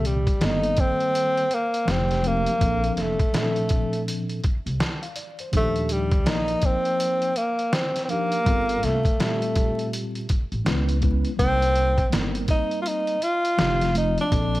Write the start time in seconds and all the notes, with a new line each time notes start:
Already playing: C2 A#2 D#3 G3 C4 G4
0.05 G3, closed hi-hat
0.27 kick, closed hi-hat
0.40 G1 D#3 G3 A#3 C4 A4, snare, closed hi-hat
0.44 D#4
0.64 closed hi-hat
0.77 C4, kick, closed hi-hat
1.00 closed hi-hat
1.15 closed hi-hat
1.37 closed hi-hat
1.51 A#3, closed hi-hat
1.74 closed hi-hat
1.85 F1 F3 A3 C4 D#4 G4, snare, closed hi-hat
1.91 C4
2.11 snare, closed hi-hat
2.22 F3 A3 C4 D#4 G4, closed hi-hat
2.27 A#3
2.46 closed hi-hat
2.59 A#1 F3 A#3 C4 D4 A4, kick, closed hi-hat
2.84 closed hi-hat
2.95 F1 A#3, snare, closed hi-hat
3.01 A3
3.19 kick, closed hi-hat
3.32 A#2 F3 C4 D4 A4, snare, closed hi-hat
3.37 A3
3.56 closed hi-hat
3.69 kick, closed hi-hat
3.93 closed hi-hat
4.08 closed hi-hat
4.29 closed hi-hat
4.44 kick, closed hi-hat
4.66 C2, closed hi-hat
4.80 A5, snare, closed hi-hat
5.02 F5, closed hi-hat
5.16 D5, closed hi-hat
5.39 C5, closed hi-hat
5.52 D#2 A#2 F3 D4 D#4 G4, kick, closed hi-hat
5.57 A3
5.76 closed hi-hat
5.89 G3, closed hi-hat
6.12 kick, closed hi-hat
6.25 A#1 F3 A#3 D#4 A#4 D5, snare, closed hi-hat
6.48 closed hi-hat
6.62 kick, closed hi-hat
6.66 C4
6.85 closed hi-hat
7.00 closed hi-hat
7.22 closed hi-hat
7.36 A#3, closed hi-hat
7.59 closed hi-hat
7.73 C4, snare, closed hi-hat
7.96 snare, closed hi-hat
8.05 F3 C4, closed hi-hat
8.10 A#3 D4 D#4 G4
8.32 closed hi-hat
8.44 G1 G3 A#3 C4 F4, kick, closed hi-hat
8.48 A4
8.69 closed hi-hat
8.83 C2 A3, snare, closed hi-hat
9.05 kick, closed hi-hat
9.18 A#2 G3 A3 C4 F4 G4, snare, closed hi-hat
9.42 closed hi-hat
9.56 kick, closed hi-hat
9.79 closed hi-hat
9.93 closed hi-hat
10.15 closed hi-hat
10.29 kick, closed hi-hat
10.52 A1, closed hi-hat
10.64 C#2 G#3 B3 C#4 E4 B4, snare, closed hi-hat
10.89 closed hi-hat
11.01 G#3 B3 C#4 E4 B4, kick, closed hi-hat
11.25 closed hi-hat
11.37 C2 G3 A#3 C4 D#4 A#4, kick, closed hi-hat
11.62 closed hi-hat
11.76 closed hi-hat
11.98 kick, closed hi-hat
12.10 G1 G3 A#3 C4 D#4, snare, closed hi-hat
12.14 A#4
12.35 closed hi-hat
12.48 D#4, kick, closed hi-hat
12.71 closed hi-hat
12.82 F4, closed hi-hat
12.88 D#4
13.07 closed hi-hat
13.22 F4, closed hi-hat
13.45 closed hi-hat
13.57 F1 F3 A3 C4 D#4 G4, snare, closed hi-hat
13.81 snare, closed hi-hat
13.94 F3 A3 C4 D#4 F4, closed hi-hat
13.98 D#4
14.18 D4, closed hi-hat
14.30 A#1 F3 A#3 C4 D4 A4, kick, closed hi-hat
14.55 closed hi-hat